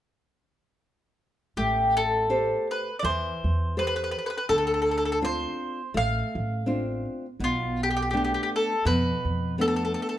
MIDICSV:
0, 0, Header, 1, 4, 480
1, 0, Start_track
1, 0, Key_signature, 0, "minor"
1, 0, Tempo, 729040
1, 1037, Time_signature, 4, 2, 24, 8
1, 6704, End_track
2, 0, Start_track
2, 0, Title_t, "Mandolin"
2, 0, Program_c, 0, 25
2, 1035, Note_on_c, 0, 67, 64
2, 1280, Note_off_c, 0, 67, 0
2, 1295, Note_on_c, 0, 69, 64
2, 1754, Note_off_c, 0, 69, 0
2, 1785, Note_on_c, 0, 71, 57
2, 1950, Note_off_c, 0, 71, 0
2, 1971, Note_on_c, 0, 74, 50
2, 2002, Note_off_c, 0, 74, 0
2, 2005, Note_on_c, 0, 72, 72
2, 2492, Note_off_c, 0, 72, 0
2, 2494, Note_on_c, 0, 71, 63
2, 2540, Note_off_c, 0, 71, 0
2, 2548, Note_on_c, 0, 71, 53
2, 2597, Note_off_c, 0, 71, 0
2, 2607, Note_on_c, 0, 71, 49
2, 2650, Note_off_c, 0, 71, 0
2, 2658, Note_on_c, 0, 71, 47
2, 2700, Note_off_c, 0, 71, 0
2, 2708, Note_on_c, 0, 71, 47
2, 2748, Note_off_c, 0, 71, 0
2, 2756, Note_on_c, 0, 71, 38
2, 2799, Note_off_c, 0, 71, 0
2, 2806, Note_on_c, 0, 71, 47
2, 2823, Note_off_c, 0, 71, 0
2, 2831, Note_on_c, 0, 71, 48
2, 2873, Note_off_c, 0, 71, 0
2, 2881, Note_on_c, 0, 71, 48
2, 2929, Note_off_c, 0, 71, 0
2, 2957, Note_on_c, 0, 69, 75
2, 3007, Note_off_c, 0, 69, 0
2, 3015, Note_on_c, 0, 69, 47
2, 3065, Note_off_c, 0, 69, 0
2, 3074, Note_on_c, 0, 69, 52
2, 3112, Note_off_c, 0, 69, 0
2, 3120, Note_on_c, 0, 69, 42
2, 3164, Note_off_c, 0, 69, 0
2, 3172, Note_on_c, 0, 69, 49
2, 3223, Note_off_c, 0, 69, 0
2, 3235, Note_on_c, 0, 69, 41
2, 3268, Note_off_c, 0, 69, 0
2, 3276, Note_on_c, 0, 69, 53
2, 3317, Note_off_c, 0, 69, 0
2, 3327, Note_on_c, 0, 69, 47
2, 3363, Note_off_c, 0, 69, 0
2, 3371, Note_on_c, 0, 69, 57
2, 3409, Note_off_c, 0, 69, 0
2, 3454, Note_on_c, 0, 72, 72
2, 3900, Note_off_c, 0, 72, 0
2, 3932, Note_on_c, 0, 77, 76
2, 4637, Note_off_c, 0, 77, 0
2, 4898, Note_on_c, 0, 65, 68
2, 5153, Note_off_c, 0, 65, 0
2, 5157, Note_on_c, 0, 67, 62
2, 5192, Note_off_c, 0, 67, 0
2, 5205, Note_on_c, 0, 67, 45
2, 5238, Note_off_c, 0, 67, 0
2, 5244, Note_on_c, 0, 67, 54
2, 5275, Note_off_c, 0, 67, 0
2, 5283, Note_on_c, 0, 67, 38
2, 5322, Note_off_c, 0, 67, 0
2, 5337, Note_on_c, 0, 67, 47
2, 5372, Note_off_c, 0, 67, 0
2, 5380, Note_on_c, 0, 67, 38
2, 5420, Note_off_c, 0, 67, 0
2, 5428, Note_on_c, 0, 67, 44
2, 5475, Note_off_c, 0, 67, 0
2, 5493, Note_on_c, 0, 67, 43
2, 5533, Note_off_c, 0, 67, 0
2, 5550, Note_on_c, 0, 67, 47
2, 5588, Note_off_c, 0, 67, 0
2, 5635, Note_on_c, 0, 69, 68
2, 5827, Note_off_c, 0, 69, 0
2, 5837, Note_on_c, 0, 71, 77
2, 6286, Note_off_c, 0, 71, 0
2, 6329, Note_on_c, 0, 69, 68
2, 6363, Note_off_c, 0, 69, 0
2, 6371, Note_on_c, 0, 69, 51
2, 6420, Note_off_c, 0, 69, 0
2, 6428, Note_on_c, 0, 69, 54
2, 6477, Note_off_c, 0, 69, 0
2, 6483, Note_on_c, 0, 69, 47
2, 6531, Note_off_c, 0, 69, 0
2, 6546, Note_on_c, 0, 69, 51
2, 6588, Note_off_c, 0, 69, 0
2, 6599, Note_on_c, 0, 69, 43
2, 6633, Note_off_c, 0, 69, 0
2, 6643, Note_on_c, 0, 69, 50
2, 6677, Note_off_c, 0, 69, 0
2, 6704, End_track
3, 0, Start_track
3, 0, Title_t, "Nylon-string guitar"
3, 0, Program_c, 1, 24
3, 1034, Note_on_c, 1, 57, 49
3, 1505, Note_off_c, 1, 57, 0
3, 1512, Note_on_c, 1, 67, 40
3, 1514, Note_on_c, 1, 69, 40
3, 1516, Note_on_c, 1, 72, 46
3, 1901, Note_off_c, 1, 67, 0
3, 1902, Note_off_c, 1, 69, 0
3, 1904, Note_off_c, 1, 72, 0
3, 1992, Note_on_c, 1, 52, 53
3, 2464, Note_off_c, 1, 52, 0
3, 2482, Note_on_c, 1, 67, 36
3, 2482, Note_on_c, 1, 69, 35
3, 2486, Note_on_c, 1, 72, 40
3, 2866, Note_off_c, 1, 69, 0
3, 2867, Note_off_c, 1, 67, 0
3, 2868, Note_off_c, 1, 72, 0
3, 2956, Note_on_c, 1, 50, 49
3, 3424, Note_off_c, 1, 50, 0
3, 3434, Note_on_c, 1, 60, 41
3, 3438, Note_on_c, 1, 62, 41
3, 3440, Note_on_c, 1, 65, 42
3, 3820, Note_off_c, 1, 60, 0
3, 3820, Note_off_c, 1, 62, 0
3, 3823, Note_off_c, 1, 65, 0
3, 3912, Note_on_c, 1, 57, 52
3, 4379, Note_off_c, 1, 57, 0
3, 4386, Note_on_c, 1, 60, 31
3, 4389, Note_on_c, 1, 62, 30
3, 4394, Note_on_c, 1, 65, 42
3, 4773, Note_off_c, 1, 60, 0
3, 4775, Note_off_c, 1, 62, 0
3, 4778, Note_off_c, 1, 65, 0
3, 4874, Note_on_c, 1, 47, 56
3, 5338, Note_off_c, 1, 47, 0
3, 5353, Note_on_c, 1, 57, 42
3, 5357, Note_on_c, 1, 59, 36
3, 5358, Note_on_c, 1, 62, 47
3, 5735, Note_off_c, 1, 57, 0
3, 5736, Note_off_c, 1, 59, 0
3, 5738, Note_off_c, 1, 62, 0
3, 5828, Note_on_c, 1, 47, 55
3, 6294, Note_off_c, 1, 47, 0
3, 6308, Note_on_c, 1, 57, 38
3, 6313, Note_on_c, 1, 59, 36
3, 6316, Note_on_c, 1, 62, 38
3, 6693, Note_off_c, 1, 57, 0
3, 6694, Note_off_c, 1, 59, 0
3, 6698, Note_off_c, 1, 62, 0
3, 6704, End_track
4, 0, Start_track
4, 0, Title_t, "Upright bass"
4, 0, Program_c, 2, 32
4, 1033, Note_on_c, 2, 33, 66
4, 1662, Note_off_c, 2, 33, 0
4, 2002, Note_on_c, 2, 40, 70
4, 2172, Note_off_c, 2, 40, 0
4, 2265, Note_on_c, 2, 40, 69
4, 2719, Note_off_c, 2, 40, 0
4, 2960, Note_on_c, 2, 38, 65
4, 3583, Note_off_c, 2, 38, 0
4, 3917, Note_on_c, 2, 33, 76
4, 4086, Note_off_c, 2, 33, 0
4, 4182, Note_on_c, 2, 33, 78
4, 4634, Note_off_c, 2, 33, 0
4, 4869, Note_on_c, 2, 35, 73
4, 5492, Note_off_c, 2, 35, 0
4, 5830, Note_on_c, 2, 41, 82
4, 5998, Note_off_c, 2, 41, 0
4, 6090, Note_on_c, 2, 41, 70
4, 6545, Note_off_c, 2, 41, 0
4, 6704, End_track
0, 0, End_of_file